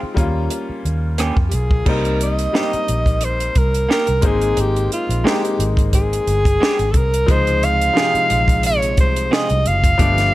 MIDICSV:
0, 0, Header, 1, 8, 480
1, 0, Start_track
1, 0, Tempo, 677201
1, 1323, Time_signature, 4, 2, 24, 8
1, 7330, End_track
2, 0, Start_track
2, 0, Title_t, "Alto saxophone"
2, 0, Program_c, 0, 65
2, 1051, Note_on_c, 0, 67, 54
2, 1095, Note_on_c, 0, 68, 74
2, 1105, Note_off_c, 0, 67, 0
2, 1335, Note_on_c, 0, 70, 84
2, 1346, Note_off_c, 0, 68, 0
2, 1569, Note_off_c, 0, 70, 0
2, 1579, Note_on_c, 0, 75, 89
2, 2298, Note_on_c, 0, 72, 85
2, 2308, Note_off_c, 0, 75, 0
2, 2537, Note_on_c, 0, 70, 88
2, 2548, Note_off_c, 0, 72, 0
2, 2771, Note_off_c, 0, 70, 0
2, 2777, Note_on_c, 0, 70, 97
2, 3021, Note_on_c, 0, 68, 87
2, 3032, Note_off_c, 0, 70, 0
2, 3260, Note_on_c, 0, 67, 90
2, 3271, Note_off_c, 0, 68, 0
2, 3490, Note_off_c, 0, 67, 0
2, 3495, Note_on_c, 0, 65, 82
2, 3735, Note_on_c, 0, 67, 89
2, 3746, Note_off_c, 0, 65, 0
2, 4021, Note_off_c, 0, 67, 0
2, 4215, Note_on_c, 0, 68, 100
2, 4898, Note_on_c, 0, 69, 70
2, 4909, Note_off_c, 0, 68, 0
2, 4943, Note_on_c, 0, 70, 96
2, 4954, Note_off_c, 0, 69, 0
2, 5182, Note_on_c, 0, 72, 109
2, 5193, Note_off_c, 0, 70, 0
2, 5419, Note_on_c, 0, 77, 111
2, 5429, Note_off_c, 0, 72, 0
2, 6130, Note_off_c, 0, 77, 0
2, 6141, Note_on_c, 0, 73, 105
2, 6355, Note_off_c, 0, 73, 0
2, 6381, Note_on_c, 0, 72, 89
2, 6618, Note_on_c, 0, 75, 103
2, 6628, Note_off_c, 0, 72, 0
2, 6857, Note_on_c, 0, 77, 123
2, 6868, Note_off_c, 0, 75, 0
2, 7330, Note_off_c, 0, 77, 0
2, 7330, End_track
3, 0, Start_track
3, 0, Title_t, "Clean electric guitar"
3, 0, Program_c, 1, 27
3, 839, Note_on_c, 1, 58, 64
3, 843, Note_on_c, 1, 61, 63
3, 849, Note_on_c, 1, 67, 64
3, 955, Note_off_c, 1, 58, 0
3, 957, Note_off_c, 1, 61, 0
3, 960, Note_off_c, 1, 67, 0
3, 1800, Note_on_c, 1, 58, 65
3, 1805, Note_on_c, 1, 63, 71
3, 1806, Note_on_c, 1, 67, 78
3, 1916, Note_off_c, 1, 58, 0
3, 1919, Note_off_c, 1, 63, 0
3, 1919, Note_off_c, 1, 67, 0
3, 2754, Note_on_c, 1, 58, 58
3, 2761, Note_on_c, 1, 63, 65
3, 2765, Note_on_c, 1, 67, 65
3, 2874, Note_off_c, 1, 58, 0
3, 2877, Note_off_c, 1, 63, 0
3, 2879, Note_off_c, 1, 67, 0
3, 3716, Note_on_c, 1, 56, 74
3, 3723, Note_on_c, 1, 60, 77
3, 3724, Note_on_c, 1, 67, 80
3, 3834, Note_off_c, 1, 56, 0
3, 3838, Note_off_c, 1, 60, 0
3, 3839, Note_off_c, 1, 67, 0
3, 4681, Note_on_c, 1, 56, 64
3, 4685, Note_on_c, 1, 60, 68
3, 4691, Note_on_c, 1, 67, 74
3, 4797, Note_off_c, 1, 56, 0
3, 4799, Note_off_c, 1, 60, 0
3, 4802, Note_off_c, 1, 67, 0
3, 5644, Note_on_c, 1, 60, 71
3, 5647, Note_on_c, 1, 65, 75
3, 5651, Note_on_c, 1, 68, 77
3, 5758, Note_off_c, 1, 60, 0
3, 5759, Note_off_c, 1, 65, 0
3, 5761, Note_off_c, 1, 68, 0
3, 6600, Note_on_c, 1, 60, 69
3, 6604, Note_on_c, 1, 65, 77
3, 6611, Note_on_c, 1, 68, 76
3, 6715, Note_off_c, 1, 60, 0
3, 6717, Note_off_c, 1, 65, 0
3, 6720, Note_off_c, 1, 68, 0
3, 7330, End_track
4, 0, Start_track
4, 0, Title_t, "Grand piano"
4, 0, Program_c, 2, 0
4, 0, Control_c, 2, 64, 127
4, 0, Note_on_c, 2, 56, 79
4, 0, Note_on_c, 2, 60, 72
4, 0, Note_on_c, 2, 63, 76
4, 0, Note_on_c, 2, 65, 94
4, 101, Note_on_c, 2, 55, 75
4, 111, Note_off_c, 2, 56, 0
4, 113, Note_on_c, 2, 58, 75
4, 116, Note_off_c, 2, 60, 0
4, 120, Note_off_c, 2, 63, 0
4, 120, Note_off_c, 2, 65, 0
4, 120, Note_on_c, 2, 61, 74
4, 131, Control_c, 2, 64, 0
4, 131, Note_on_c, 2, 65, 90
4, 248, Control_c, 2, 64, 127
4, 926, Note_off_c, 2, 55, 0
4, 933, Note_off_c, 2, 58, 0
4, 936, Note_off_c, 2, 61, 0
4, 941, Note_off_c, 2, 65, 0
4, 1314, Note_on_c, 2, 55, 68
4, 1320, Note_on_c, 2, 58, 58
4, 1330, Note_on_c, 2, 60, 61
4, 1332, Control_c, 2, 64, 0
4, 1339, Note_on_c, 2, 63, 79
4, 1467, Control_c, 2, 64, 127
4, 1728, Note_off_c, 2, 55, 0
4, 1732, Note_off_c, 2, 58, 0
4, 1737, Note_off_c, 2, 60, 0
4, 1741, Note_off_c, 2, 63, 0
4, 1791, Note_on_c, 2, 55, 70
4, 1800, Note_on_c, 2, 58, 66
4, 1814, Note_on_c, 2, 60, 57
4, 1820, Note_on_c, 2, 63, 71
4, 2612, Note_off_c, 2, 55, 0
4, 2616, Note_off_c, 2, 58, 0
4, 2623, Note_off_c, 2, 60, 0
4, 2626, Note_off_c, 2, 63, 0
4, 2986, Note_on_c, 2, 56, 71
4, 2997, Note_on_c, 2, 58, 73
4, 3003, Note_on_c, 2, 60, 69
4, 3014, Control_c, 2, 64, 0
4, 3015, Note_on_c, 2, 63, 78
4, 3121, Control_c, 2, 64, 127
4, 3610, Note_off_c, 2, 56, 0
4, 3615, Note_off_c, 2, 58, 0
4, 3618, Note_off_c, 2, 60, 0
4, 3624, Note_off_c, 2, 63, 0
4, 3714, Note_on_c, 2, 56, 75
4, 3718, Note_on_c, 2, 58, 61
4, 3731, Note_on_c, 2, 60, 62
4, 3738, Note_on_c, 2, 63, 72
4, 4533, Note_off_c, 2, 56, 0
4, 4535, Note_off_c, 2, 58, 0
4, 4541, Note_off_c, 2, 60, 0
4, 4545, Note_off_c, 2, 63, 0
4, 5149, Note_on_c, 2, 53, 74
4, 5160, Note_on_c, 2, 56, 68
4, 5167, Note_on_c, 2, 60, 64
4, 5172, Control_c, 2, 64, 0
4, 5177, Note_on_c, 2, 63, 84
4, 5302, Control_c, 2, 64, 127
4, 5566, Note_off_c, 2, 53, 0
4, 5571, Note_off_c, 2, 56, 0
4, 5574, Note_off_c, 2, 60, 0
4, 5579, Note_off_c, 2, 63, 0
4, 5624, Note_on_c, 2, 53, 70
4, 5636, Note_on_c, 2, 56, 64
4, 5643, Note_on_c, 2, 48, 66
4, 5653, Note_on_c, 2, 63, 76
4, 6446, Note_off_c, 2, 53, 0
4, 6452, Note_off_c, 2, 56, 0
4, 6456, Note_off_c, 2, 48, 0
4, 6461, Note_off_c, 2, 63, 0
4, 7072, Note_on_c, 2, 53, 75
4, 7080, Note_on_c, 2, 57, 66
4, 7087, Note_on_c, 2, 59, 64
4, 7088, Control_c, 2, 64, 0
4, 7096, Note_on_c, 2, 62, 84
4, 7193, Control_c, 2, 64, 127
4, 7330, Note_off_c, 2, 53, 0
4, 7330, Note_off_c, 2, 57, 0
4, 7330, Note_off_c, 2, 59, 0
4, 7330, Note_off_c, 2, 62, 0
4, 7330, End_track
5, 0, Start_track
5, 0, Title_t, "Tonewheel organ"
5, 0, Program_c, 3, 16
5, 5158, Note_on_c, 3, 48, 65
5, 5163, Note_on_c, 3, 65, 74
5, 5164, Note_on_c, 3, 56, 56
5, 7058, Note_off_c, 3, 48, 0
5, 7061, Note_off_c, 3, 65, 0
5, 7062, Note_off_c, 3, 56, 0
5, 7076, Note_on_c, 3, 55, 61
5, 7079, Note_on_c, 3, 59, 61
5, 7080, Note_on_c, 3, 67, 69
5, 7330, Note_off_c, 3, 55, 0
5, 7330, Note_off_c, 3, 59, 0
5, 7330, Note_off_c, 3, 67, 0
5, 7330, End_track
6, 0, Start_track
6, 0, Title_t, "Fingered electric bass"
6, 0, Program_c, 4, 33
6, 124, Note_on_c, 4, 39, 89
6, 334, Note_off_c, 4, 39, 0
6, 602, Note_on_c, 4, 39, 82
6, 927, Note_off_c, 4, 39, 0
6, 970, Note_on_c, 4, 41, 59
6, 1068, Note_off_c, 4, 41, 0
6, 1087, Note_on_c, 4, 35, 81
6, 1296, Note_off_c, 4, 35, 0
6, 1325, Note_on_c, 4, 36, 101
6, 1746, Note_off_c, 4, 36, 0
6, 2048, Note_on_c, 4, 34, 86
6, 2468, Note_off_c, 4, 34, 0
6, 2523, Note_on_c, 4, 36, 82
6, 2735, Note_off_c, 4, 36, 0
6, 2895, Note_on_c, 4, 36, 71
6, 2992, Note_off_c, 4, 36, 0
6, 3001, Note_on_c, 4, 32, 88
6, 3213, Note_off_c, 4, 32, 0
6, 3242, Note_on_c, 4, 32, 96
6, 3454, Note_off_c, 4, 32, 0
6, 3609, Note_on_c, 4, 34, 85
6, 3708, Note_off_c, 4, 34, 0
6, 3963, Note_on_c, 4, 32, 74
6, 4385, Note_off_c, 4, 32, 0
6, 4446, Note_on_c, 4, 31, 90
6, 4656, Note_off_c, 4, 31, 0
6, 4815, Note_on_c, 4, 32, 71
6, 4911, Note_off_c, 4, 32, 0
6, 4924, Note_on_c, 4, 36, 91
6, 5134, Note_off_c, 4, 36, 0
6, 5165, Note_on_c, 4, 37, 113
6, 5586, Note_off_c, 4, 37, 0
6, 5888, Note_on_c, 4, 34, 91
6, 6367, Note_off_c, 4, 34, 0
6, 6367, Note_on_c, 4, 36, 90
6, 6575, Note_off_c, 4, 36, 0
6, 6738, Note_on_c, 4, 36, 81
6, 6832, Note_off_c, 4, 36, 0
6, 6854, Note_on_c, 4, 30, 87
6, 7059, Note_off_c, 4, 30, 0
6, 7086, Note_on_c, 4, 31, 114
6, 7294, Note_off_c, 4, 31, 0
6, 7330, End_track
7, 0, Start_track
7, 0, Title_t, "Muted fingered electric bass strokes"
7, 22, Note_on_c, 9, 29, 39
7, 93, Note_off_c, 9, 29, 0
7, 492, Note_on_c, 9, 29, 41
7, 563, Note_off_c, 9, 29, 0
7, 1940, Note_on_c, 9, 29, 42
7, 2011, Note_off_c, 9, 29, 0
7, 5774, Note_on_c, 9, 29, 44
7, 5845, Note_off_c, 9, 29, 0
7, 7330, End_track
8, 0, Start_track
8, 0, Title_t, "Drums"
8, 120, Note_on_c, 9, 36, 92
8, 126, Note_on_c, 9, 42, 61
8, 190, Note_off_c, 9, 36, 0
8, 197, Note_off_c, 9, 42, 0
8, 357, Note_on_c, 9, 42, 85
8, 428, Note_off_c, 9, 42, 0
8, 606, Note_on_c, 9, 42, 47
8, 676, Note_off_c, 9, 42, 0
8, 838, Note_on_c, 9, 42, 101
8, 850, Note_on_c, 9, 37, 100
8, 909, Note_off_c, 9, 42, 0
8, 921, Note_off_c, 9, 37, 0
8, 968, Note_on_c, 9, 36, 78
8, 1039, Note_off_c, 9, 36, 0
8, 1074, Note_on_c, 9, 42, 66
8, 1144, Note_off_c, 9, 42, 0
8, 1210, Note_on_c, 9, 36, 84
8, 1281, Note_off_c, 9, 36, 0
8, 1318, Note_on_c, 9, 49, 85
8, 1320, Note_on_c, 9, 36, 102
8, 1389, Note_off_c, 9, 49, 0
8, 1391, Note_off_c, 9, 36, 0
8, 1453, Note_on_c, 9, 42, 41
8, 1524, Note_off_c, 9, 42, 0
8, 1564, Note_on_c, 9, 42, 66
8, 1635, Note_off_c, 9, 42, 0
8, 1691, Note_on_c, 9, 42, 50
8, 1762, Note_off_c, 9, 42, 0
8, 1807, Note_on_c, 9, 38, 106
8, 1878, Note_off_c, 9, 38, 0
8, 1937, Note_on_c, 9, 42, 44
8, 2008, Note_off_c, 9, 42, 0
8, 2044, Note_on_c, 9, 42, 67
8, 2114, Note_off_c, 9, 42, 0
8, 2168, Note_on_c, 9, 36, 72
8, 2176, Note_on_c, 9, 42, 44
8, 2239, Note_off_c, 9, 36, 0
8, 2247, Note_off_c, 9, 42, 0
8, 2273, Note_on_c, 9, 42, 84
8, 2344, Note_off_c, 9, 42, 0
8, 2412, Note_on_c, 9, 42, 50
8, 2483, Note_off_c, 9, 42, 0
8, 2519, Note_on_c, 9, 42, 52
8, 2521, Note_on_c, 9, 36, 80
8, 2590, Note_off_c, 9, 42, 0
8, 2592, Note_off_c, 9, 36, 0
8, 2654, Note_on_c, 9, 42, 57
8, 2724, Note_off_c, 9, 42, 0
8, 2770, Note_on_c, 9, 38, 98
8, 2841, Note_off_c, 9, 38, 0
8, 2884, Note_on_c, 9, 42, 46
8, 2955, Note_off_c, 9, 42, 0
8, 2993, Note_on_c, 9, 42, 68
8, 2999, Note_on_c, 9, 36, 106
8, 3064, Note_off_c, 9, 42, 0
8, 3070, Note_off_c, 9, 36, 0
8, 3129, Note_on_c, 9, 42, 53
8, 3200, Note_off_c, 9, 42, 0
8, 3239, Note_on_c, 9, 42, 76
8, 3309, Note_off_c, 9, 42, 0
8, 3377, Note_on_c, 9, 42, 44
8, 3447, Note_off_c, 9, 42, 0
8, 3487, Note_on_c, 9, 42, 62
8, 3558, Note_off_c, 9, 42, 0
8, 3618, Note_on_c, 9, 42, 55
8, 3689, Note_off_c, 9, 42, 0
8, 3734, Note_on_c, 9, 38, 112
8, 3805, Note_off_c, 9, 38, 0
8, 3861, Note_on_c, 9, 42, 48
8, 3932, Note_off_c, 9, 42, 0
8, 3969, Note_on_c, 9, 42, 68
8, 4040, Note_off_c, 9, 42, 0
8, 4090, Note_on_c, 9, 36, 76
8, 4100, Note_on_c, 9, 42, 49
8, 4161, Note_off_c, 9, 36, 0
8, 4171, Note_off_c, 9, 42, 0
8, 4203, Note_on_c, 9, 42, 91
8, 4204, Note_on_c, 9, 36, 76
8, 4274, Note_off_c, 9, 42, 0
8, 4275, Note_off_c, 9, 36, 0
8, 4345, Note_on_c, 9, 42, 53
8, 4416, Note_off_c, 9, 42, 0
8, 4447, Note_on_c, 9, 42, 51
8, 4518, Note_off_c, 9, 42, 0
8, 4574, Note_on_c, 9, 36, 88
8, 4580, Note_on_c, 9, 42, 62
8, 4645, Note_off_c, 9, 36, 0
8, 4651, Note_off_c, 9, 42, 0
8, 4699, Note_on_c, 9, 38, 110
8, 4770, Note_off_c, 9, 38, 0
8, 4814, Note_on_c, 9, 42, 46
8, 4885, Note_off_c, 9, 42, 0
8, 4919, Note_on_c, 9, 42, 68
8, 4920, Note_on_c, 9, 36, 85
8, 4990, Note_off_c, 9, 42, 0
8, 4991, Note_off_c, 9, 36, 0
8, 5059, Note_on_c, 9, 42, 59
8, 5130, Note_off_c, 9, 42, 0
8, 5163, Note_on_c, 9, 36, 110
8, 5164, Note_on_c, 9, 42, 79
8, 5234, Note_off_c, 9, 36, 0
8, 5234, Note_off_c, 9, 42, 0
8, 5295, Note_on_c, 9, 42, 42
8, 5366, Note_off_c, 9, 42, 0
8, 5408, Note_on_c, 9, 42, 67
8, 5478, Note_off_c, 9, 42, 0
8, 5539, Note_on_c, 9, 42, 52
8, 5610, Note_off_c, 9, 42, 0
8, 5648, Note_on_c, 9, 38, 118
8, 5719, Note_off_c, 9, 38, 0
8, 5777, Note_on_c, 9, 42, 46
8, 5848, Note_off_c, 9, 42, 0
8, 5883, Note_on_c, 9, 42, 75
8, 5954, Note_off_c, 9, 42, 0
8, 6010, Note_on_c, 9, 36, 73
8, 6018, Note_on_c, 9, 42, 47
8, 6081, Note_off_c, 9, 36, 0
8, 6089, Note_off_c, 9, 42, 0
8, 6119, Note_on_c, 9, 42, 99
8, 6190, Note_off_c, 9, 42, 0
8, 6255, Note_on_c, 9, 42, 53
8, 6325, Note_off_c, 9, 42, 0
8, 6361, Note_on_c, 9, 42, 56
8, 6363, Note_on_c, 9, 36, 92
8, 6431, Note_off_c, 9, 42, 0
8, 6434, Note_off_c, 9, 36, 0
8, 6495, Note_on_c, 9, 42, 62
8, 6566, Note_off_c, 9, 42, 0
8, 6613, Note_on_c, 9, 38, 111
8, 6684, Note_off_c, 9, 38, 0
8, 6731, Note_on_c, 9, 42, 47
8, 6802, Note_off_c, 9, 42, 0
8, 6844, Note_on_c, 9, 42, 67
8, 6915, Note_off_c, 9, 42, 0
8, 6972, Note_on_c, 9, 36, 91
8, 6975, Note_on_c, 9, 42, 62
8, 7043, Note_off_c, 9, 36, 0
8, 7046, Note_off_c, 9, 42, 0
8, 7083, Note_on_c, 9, 36, 113
8, 7083, Note_on_c, 9, 42, 90
8, 7154, Note_off_c, 9, 36, 0
8, 7154, Note_off_c, 9, 42, 0
8, 7215, Note_on_c, 9, 42, 46
8, 7220, Note_on_c, 9, 38, 31
8, 7286, Note_off_c, 9, 42, 0
8, 7291, Note_off_c, 9, 38, 0
8, 7330, End_track
0, 0, End_of_file